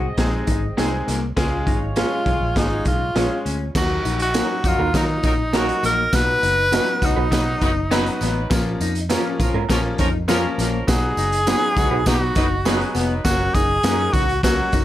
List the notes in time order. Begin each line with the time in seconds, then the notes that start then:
Already playing: C2 C4 G#4 D#5
0.18 A#1 G#3 C4 D#4 G#4, kick, snare, closed hi-hat
0.47 G#1 D#4, kick, closed hi-hat
0.77 C2 G#3 C4 D#4 G#4 C5, snare, closed hi-hat
1.07 C2 A#3, snare, closed hi-hat
1.36 C#2 G#3 C#4 F4 G#4 C#5, kick, snare, closed hi-hat
1.67 G#1 D#4, kick, closed hi-hat
1.96 G#3 C#4 F4 G#4 C#5, snare, closed hi-hat
2.26 B1 F4, kick, closed hi-hat
2.41 A#1
2.56 G#1 G#3 C#4 D#4 F4 G#4, kick, snare, closed hi-hat
2.85 B1 D#4 F4, kick, closed hi-hat
3.15 A#1 G#3 C#4 F4 G#4 C#5, snare, closed hi-hat
3.45 D2 C#4, closed hi-hat
3.75 D#2 F#3 A#3 D#4 F#4, kick, snare, crash, tambourine
4.05 A#1 D#4, closed hi-hat, tambourine
4.19 F#4, closed hi-hat
4.34 F#3 A#3 C#4 D#4 F#4 A#4, snare, closed hi-hat, tambourine
4.64 F2 F#3 D#4 F4 F#4 A#4, kick, closed hi-hat, tambourine
4.79 D#2 A#3 D#4 F#4 A#4
4.94 D#3 F#3 A#3 D#4 F4 A#4, kick, snare, closed hi-hat, tambourine
5.23 A#1 F#3 D#4 A#4, kick, closed hi-hat, tambourine
5.53 F#3 A#3 C#4 D#4 F#4 A#4, snare, closed hi-hat, tambourine
5.69 closed hi-hat
5.83 A#1 A#3 A#4, snare, closed hi-hat, tambourine
6.13 B1 F#3 B3 D#4 F#4 B4, kick, snare, closed hi-hat, tambourine
6.43 F#1 D#4, closed hi-hat, tambourine
6.72 F#3 B3 C#4 D#4 F#4 B4, snare, closed hi-hat, tambourine
7.02 C#2 F#3 D#4 F#4 B4, kick, closed hi-hat, tambourine
7.16 B1 B3 D#4 F#4 B4
7.31 B2 F#3 B3 D#4 F#4 B4, kick, snare, closed hi-hat, tambourine
7.61 F#1 F#3 D#4 B4, kick, closed hi-hat, tambourine
7.91 F#3 B3 C#4 D#4 F#4 B4, snare, closed hi-hat, tambourine
8.06 closed hi-hat
8.21 A1 B3, snare, closed hi-hat, tambourine
8.50 A#1 F3 A#3 C#4 F4, kick, snare, closed hi-hat, tambourine
8.80 F2 D#4, closed hi-hat, tambourine
8.95 closed hi-hat
9.09 F3 A#3 C#4 F4 A#4, snare, closed hi-hat, tambourine
9.40 A#2 F3 C#4 F4 A#4, kick, closed hi-hat, tambourine
9.54 G#2 A#3 C#4 F4 A#4
9.69 A#2 F3 A#3 C#4 F4 A#4, kick, snare, closed hi-hat, tambourine
9.98 F2 F3 C#4 D#4 A#4, kick, closed hi-hat, tambourine
10.28 F3 A#3 C#4 F4 A#4, snare, closed hi-hat, tambourine
10.58 A#1 A#3, snare, closed hi-hat, tambourine
10.87 B1 F#3 B3 D#4 F#4 G#4, kick, snare, closed hi-hat, tambourine
11.17 F#1 D#4, closed hi-hat, tambourine
11.32 closed hi-hat
11.47 F#3 B3 C#4 D#4 F#4 G#4 B4, snare, closed hi-hat, tambourine
11.77 C#2 F#3 D#4 F#4 B4, kick, closed hi-hat, tambourine
11.91 B1 B3 D#4 F#4 B4
12.06 B2 F#3 B3 D#4 F#4 B4, kick, snare, closed hi-hat, tambourine
12.35 F#1 F#3 D#4 B4, kick, closed hi-hat, tambourine
12.65 F#3 B3 C#4 D#4 F#4 G#4 B4, snare, closed hi-hat, tambourine
12.81 closed hi-hat
12.95 F1 B3, snare, closed hi-hat, tambourine
13.25 F#1 F#3 A#3 C#4 F#4, kick, snare, closed hi-hat, tambourine
13.54 F#1 D#4 G#4, kick, closed hi-hat, tambourine
13.83 F#2 F#3 A#3 C#4 D#4 F#4 A#4, snare, closed hi-hat, tambourine
14.13 C#2 F#4, kick, closed hi-hat, tambourine
14.29 closed hi-hat
14.43 F#3 A#3 C#4 F#4, kick, snare, closed hi-hat, tambourine
14.72 F#1 D#4, kick, closed hi-hat, tambourine